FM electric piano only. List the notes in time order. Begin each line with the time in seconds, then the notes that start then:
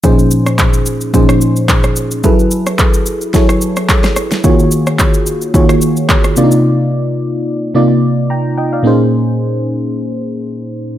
0.04 A#2 F3 C#4 D#4 G#4 C5
1.14 A#2 F3 C#4 D#4 G#4 C5
2.24 F#3 E4 G#4 A4 B4
3.34 F#3 E4 G#4 A4 C#5
4.44 D#3 A#3 F4 F#4 G#4 C#5
5.54 D#3 A#3 F4 F#4 G#4 C#5
6.37 C3 A#3 D4 F4 D5
6.44 D#4
7.74 C3 A#3 D#4 F4 D5
8.30 G5 A#5
8.58 D#5 G5
8.73 D5 F5
8.83 A#2 A#3 C#4 D#4 G#4
8.87 C5